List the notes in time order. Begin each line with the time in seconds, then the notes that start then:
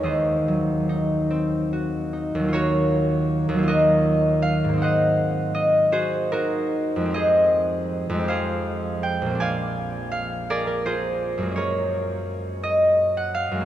Already playing: D#4 A#4 C#5
0.03 D#2 C5 D#5
0.48 F#3
0.89 D#4
1.30 C4
1.73 F#4
2.13 D#4
2.35 D#2
2.39 F#3
2.44 A#3
2.48 F4
2.53 F#4 A#4 C#5
3.49 D#2
3.54 F#3
3.58 A#3
3.63 F4
3.68 F#4 A#4 D#5
4.42 F5
4.64 G#2
4.69 A#3
4.73 C4
4.78 D#4
4.82 C5 D#5 F#5
5.55 D#5
5.92 F#4 G#4 C5
6.32 D#4 F#4 A#4
6.96 F2
7.01 G#3
7.05 C4
7.10 G4
7.14 G#4 C5 D#5
8.09 F2
8.15 G#3
8.19 C4
8.24 G4
8.28 G#4 C5 F5
9.03 G5
9.22 A#1
9.26 A#3
9.30 C4
9.35 D4
9.40 D5 F5 G#5
10.12 F5
10.50 G#4 A#4 D5
10.67 A#4
10.86 F4 G#4 C5
11.38 F#2
11.42 G#3
11.47 A#3
11.52 C#4
11.56 G#4 A#4 C#5
12.63 D#5
13.17 F#5
13.34 F5
13.51 F#2 G#3
13.61 A#3